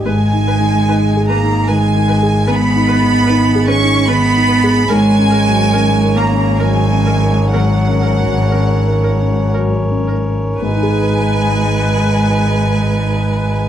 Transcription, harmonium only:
X:1
M:3/4
L:1/8
Q:1/4=69
K:G#m
V:1 name="Harmonium"
[G,Gd]6- | [G,Gd]6 | [CAc]6- | [CAc]6 |
[DGB]6 |]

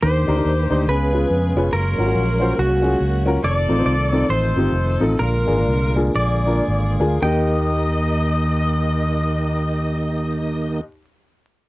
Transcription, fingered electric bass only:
X:1
M:4/4
L:1/8
Q:"Swing" 1/4=130
K:Eb
V:1 name="Fingered electric bass" clef=bass
E,, D,, E,, D,, _D,,2 F,, F,,, | _G,,, A,,, B,,,2 C,,2 _D,,2 | F,,, =A,,, C,,2 A,,, G,,, F,,, A,,, | B,,, A,,, C,,2 B,,,2 A,,, D,, |
E,,8- | E,,8 |]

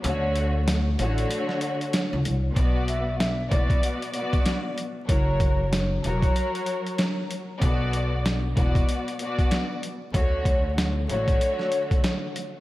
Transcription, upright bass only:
X:1
M:4/4
L:1/16
Q:"Swing 16ths" 1/4=95
K:Bm
V:1 name="Upright bass" clef=bass
D,,6 A,,,2 z4 z C,, =C,,2 | B,,,6 E,,,2 z8 | F,,,6 E,,,2 z8 | B,,,6 E,,,2 z8 |
D,,6 A,,,2 z8 |]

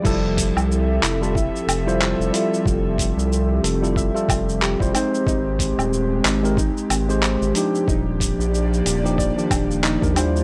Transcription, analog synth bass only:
X:1
M:4/4
L:1/16
Q:"Swing 16ths" 1/4=92
K:F
V:1 name="Analog synth bass" clef=bass
F,,,3 C,,3 F,,,3 z F,,,3 F,,, z2 | F,,,3 C,,3 F,,,3 z F,,,3 F,,, z2 | _A,,,3 _E,,,3 A,,,3 z A,,,3 A,,, z2 | _E,,,3 B,,,3 E,,,3 z E,,,3 _E,,3 |]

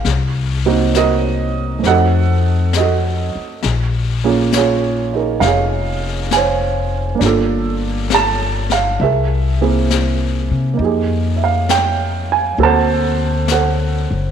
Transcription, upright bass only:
X:1
M:4/4
L:1/8
Q:"Swing" 1/4=67
K:Cphr
V:1 name="Upright bass" clef=bass
C,,4 F,,3 z | B,,,4 F,,,4 | G,,,4 C,,3 C, | F,,4 =D,,3 ^F,,, |]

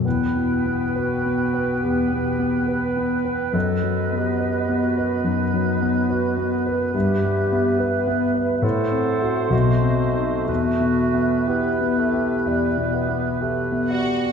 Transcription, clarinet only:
X:1
M:4/4
L:1/16
Q:1/4=69
K:Em
V:1 name="Clarinet"
E4 F4 G4 B4 | A3 G3 F2 ^D4 F3 z | G4 B4 A4 F4 | F4 E8 z4 |]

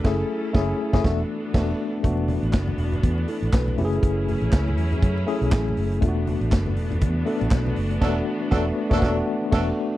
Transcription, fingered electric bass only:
X:1
M:4/4
L:1/16
Q:"Swing 16ths" 1/4=120
K:Emix
V:1 name="Fingered electric bass" clef=bass
F,,,2 z2 F,,,2 z F,,, E,,,2 z2 E,,,2 z2 | E,,,3 A,,, z2 E,,,2 E,,2 z A,,, B,,,2 F,,,2 | F,,,3 A,,, C,,2 E,,2 F,,2 z B,,, A,,,2 F,,,2 | E,,,3 A,,, F,,,2 E,,,2 E,,2 z A,,, B,,,2 F,,,2 |
E,,,2 z2 E,,,2 z E,,, E,,,2 z2 E,,,2 z2 |]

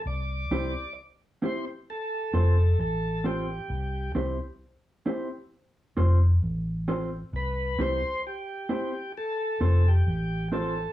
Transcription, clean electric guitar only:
X:1
M:4/4
L:1/8
Q:"Swing 16ths" 1/4=66
K:C
V:1 name="Clean electric guitar"
z [CEGc] z [CEGc] z [CFAc] z [CFAc] | z [CEGc] z [CEGc] z [CFAc] z [CFAc] | z [CEGc] z [CEGc] z [CFAc] z [CFAc] |]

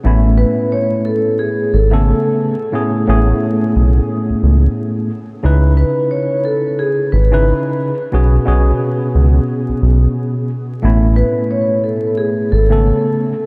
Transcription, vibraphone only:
X:1
M:4/4
L:1/8
Q:"Swing 16ths" 1/4=89
K:Alyd
V:1 name="Vibraphone"
z B c A G A3 | z8 | z B c A G B3 | z8 |
z B c A G A3 |]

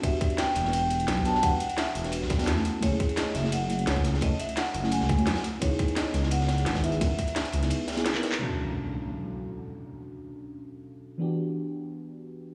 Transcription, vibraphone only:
X:1
M:4/4
L:1/8
Q:1/4=172
K:Bm
V:1 name="Vibraphone"
e2 g2 g3 a | f2 e2 z4 | c2 ^d e f2 c2 | ^d e f f ^g3 z |
c2 ^d2 f2 z e- | e6 z2 | z8 | z8 |
z8 |]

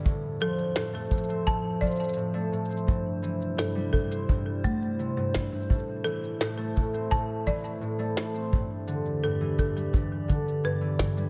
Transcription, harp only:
X:1
M:4/4
L:1/16
Q:1/4=85
K:Am
V:1 name="Harp" clef=bass
A,,2 F,2 A,, A, A,, C A,,2 F,2 A,, A, A,, C | G,,2 E,2 G,, G, G,, C G,, z G, z C, G,, E, G,, | A,,2 E,2 A,, A, A,, C A,,2 E,2 A,, A, A,, C | G,,2 D,2 G,, E, G,, G, G,,2 D,2 G,, E, G,, G, |]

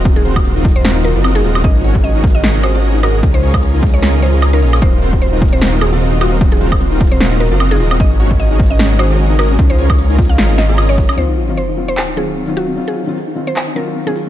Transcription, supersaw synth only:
X:1
M:4/4
L:1/16
Q:"Swing 16ths" 1/4=151
K:Ebdor
V:1 name="Supersaw synth"
[FG]2 [CFGBc]3 [CFGBe]3 [CFGBe]3 [CFGBe]3 [CFGBe]2 | [DGABe]2 [DGABd]3 [DGABe]3 [DGABe]3 [DGABe]3 [DGABe]2 | [DFABe]2 [DFABd]3 [DFABe]3 [DFABe]2 [DFABe]3 [DFABd] [DFABe]2 | [FG]2 [CFGBc]3 [CFGBe]3 [CFGBe]3 [CFGBe]3 [CFGBe]2 |
[CFBe]2 [CFGBc]3 [CFGBe]3 [CFGBe]3 [CFGBe]3 [CFGBe]2 | [DGAe]2 [DGABd]3 [DGABe]3 [DGABe]3 [DGABe]3 [DGABe]2 | [DFAe]2 [DFABd]3 [DFABe]3 [DFABe]3 [DFABe]3 [DFABe]2 | z16 |
z16 |]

